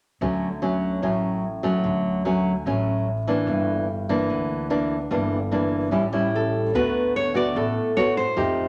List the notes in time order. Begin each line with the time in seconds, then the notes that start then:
0.21 D2 D3 F#3 A3 C#4
0.62 F#3 A3 C#4
1.02 A1 A2 F#3 A3 C#4
1.63 F#3 A3 C#4
1.84 D2 D3
2.25 F#3 A3 C#4
2.66 A1 A2 F#3 A3 C#4
3.28 E3 A#3 D4
3.47 G1 G2
4.09 E3 A#3 D4
4.29 D2 D3
4.70 E3 A#3 D4
5.11 G1 G2 E3 A#3 D4
5.52 E3 A#3 D4
5.91 A1 A2 G3 C#4 E4
6.13 G3 C#4 E4
6.35 A4
6.73 D2 D3 A3 B3 F#4 B4
7.16 C#5
7.34 A3 B3 F#4 D5
7.55 A1 A2 A4
7.97 A3 B3 F#4 C#5
8.17 C5
8.37 F2 F3 A3 D#4 G4